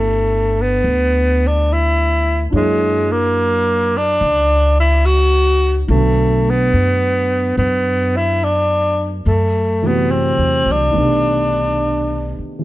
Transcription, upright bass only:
0.00 0.80 G1 medium
0.84 2.49 D2 medium
2.53 4.17 F#2 medium
4.21 5.85 C#2 medium
5.88 6.69 B1 medium
6.73 7.53 F#2 medium
7.57 9.22 F#2 medium
9.26 10.35 F#2 medium
10.38 10.65 E2 soft
10.66 10.93 C2 medium
10.94 12.35 B1 medium
12.38 muted upright bass stroke soft

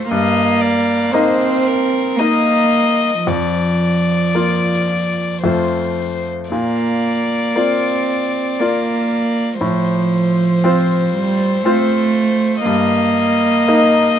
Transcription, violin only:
0.00 0.11 C5 soft
0.11 0.63 D#5 soft
0.62 1.14 D5 soft
1.13 1.68 C5 soft
1.66 2.20 A#4 soft
2.19 3.30 D#5 soft
3.28 5.43 D5 soft
5.43 6.29 C5 soft
6.51 9.57 D5 soft
9.62 12.62 C5 soft
12.65 14.19 D#5 soft

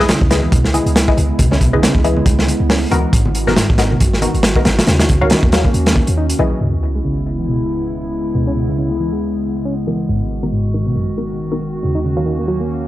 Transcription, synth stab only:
0.31 0.41 E4 medium
0.31 0.41 G#4 medium
0.31 0.41 B4 medium
0.31 0.41 D#5 medium
0.74 0.85 E4 medium
0.74 0.85 G#4 medium
0.74 0.85 B4 medium
0.74 0.85 D#5 medium
1.08 1.16 E4 medium
1.08 1.16 G#4 medium
1.08 1.16 B4 medium
1.08 1.16 D#5 loud
1.73 1.81 E4 medium
1.73 1.81 G#4 medium
1.73 1.82 B4 medium
1.73 1.81 D#5 loud
2.05 2.15 E4 medium
2.05 2.15 G#4 medium
2.05 2.15 B4 medium
2.05 2.15 D#5 medium
2.91 3.44 B3 loud
2.91 3.44 D#4 medium
2.91 3.44 F#4 medium
2.91 3.44 A#4 loud
3.47 3.55 B3 loud
3.47 3.55 D#4 medium
3.47 3.55 F#4 medium
3.47 3.55 A#4 loud
3.79 3.89 B3 medium
3.79 3.89 D#4 medium
3.79 3.89 F#4 medium
3.79 3.89 A#4 medium
4.22 4.33 B3 medium
4.22 4.33 D#4 medium
4.22 4.33 F#4 medium
4.22 4.33 A#4 medium
4.56 4.64 B3 medium
4.56 4.64 D#4 medium
4.56 4.64 F#4 medium
4.56 4.64 A#4 loud
5.21 5.29 F#4 loud
5.21 5.29 A#4 medium
5.21 5.29 C#5 medium
5.21 5.29 F5 loud
5.53 5.63 F#4 medium
5.53 5.63 A#4 medium
5.53 5.63 C#5 medium
5.53 5.63 F5 medium
6.39 6.83 E4 medium
6.39 6.83 G#4 medium
6.39 6.83 B4 medium
6.39 6.83 D#5 loud
6.95 7.03 E4 loud
6.95 7.03 G#4 medium
6.95 7.03 B4 medium
6.95 7.03 D#5 loud
7.26 7.37 E4 medium
7.26 7.37 G#4 medium
7.26 7.37 B4 medium
7.26 7.37 D#5 medium
7.70 7.80 E4 medium
7.70 7.80 G#4 medium
7.70 7.80 B4 medium
7.70 7.80 D#5 medium
8.04 8.12 E4 medium
8.04 8.12 G#4 medium
8.04 8.12 B4 medium
8.04 8.12 D#5 medium
8.69 8.77 E4 medium
8.69 8.77 G#4 medium
8.69 8.77 B4 medium
8.69 8.77 D#5 loud
9.00 9.11 E4 medium
9.00 9.11 G#4 medium
9.00 9.11 B4 medium
9.00 9.11 D#5 medium
9.87 10.40 B3 medium
9.87 10.40 D#4 medium
9.87 10.40 F#4 medium
9.87 10.40 A#4 loud
10.43 10.51 B3 medium
10.43 10.51 D#4 medium
10.43 10.51 F#4 medium
10.43 10.51 A#4 loud
10.74 10.85 B3 medium
10.74 10.85 D#4 medium
10.74 10.85 F#4 medium
10.74 10.85 A#4 medium
11.18 11.28 B3 medium
11.18 11.28 D#4 medium
11.18 11.28 F#4 medium
11.18 11.28 A#4 medium
11.52 11.60 B3 medium
11.52 11.60 D#4 medium
11.52 11.60 F#4 medium
11.52 11.60 A#4 medium
12.17 12.25 F#4 medium
12.17 12.25 A#4 medium
12.17 12.25 C#5 medium
12.17 12.25 F5 loud
12.48 12.59 F#4 medium
12.48 12.59 A#4 medium
12.48 12.59 C#5 medium
12.48 12.59 F5 medium

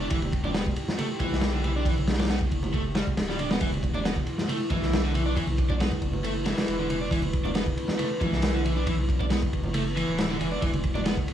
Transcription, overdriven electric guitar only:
0.01 0.07 D4 medium
0.11 0.18 E3 loud
0.45 0.48 D4 medium
0.55 0.62 B3 medium
0.99 1.06 A3 loud
1.21 1.53 E3 medium
1.54 1.60 D3 medium
1.64 1.72 E3 medium
1.76 1.83 D4 medium
1.86 1.94 E3 loud
2.20 2.24 D4 medium
2.30 2.37 B3 medium
2.74 2.81 A3 medium
2.96 3.03 G3 loud
3.29 3.36 G3 medium
3.40 3.50 D4 medium
3.51 3.58 B3 medium
3.61 3.69 E3 loud
3.95 3.99 D4 medium
4.05 4.13 B3 medium
4.49 4.56 A3 loud
4.71 5.03 E3 medium
5.05 5.11 D3 medium
5.15 5.22 E3 medium
5.26 5.33 D4 medium
5.37 5.44 E3 loud
5.70 5.74 D4 medium
5.80 5.88 B3 medium
6.24 6.32 A3 loud
6.46 6.78 E3 medium
6.79 6.86 D3 medium
6.90 6.97 E3 medium
7.01 7.08 D4 medium
7.12 7.19 E3 loud
7.45 7.49 D4 medium
7.56 7.63 B3 medium
7.99 8.07 A3 loud
8.21 8.54 E3 medium
8.55 8.61 D3 medium
8.65 8.72 E3 medium
8.77 8.83 D4 medium
8.87 8.94 E3 loud
9.20 9.24 D4 medium
9.31 9.38 B3 medium
9.75 9.82 A3 loud
9.96 10.29 E3 medium
10.30 10.36 D3 medium
10.40 10.47 E3 medium
10.52 10.58 D4 medium
10.62 10.69 E3 loud
10.95 10.99 D4 medium
11.06 11.13 B3 medium

